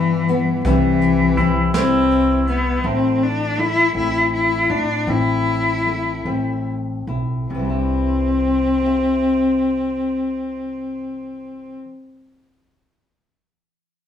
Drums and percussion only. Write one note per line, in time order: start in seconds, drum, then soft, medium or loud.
0.28 closed hi-hat soft
0.65 kick medium
0.65 closed hi-hat medium
1.01 closed hi-hat medium
1.37 kick medium
1.37 closed hi-hat soft
1.74 snare medium
1.74 closed hi-hat medium
2.11 closed hi-hat soft
2.47 closed hi-hat medium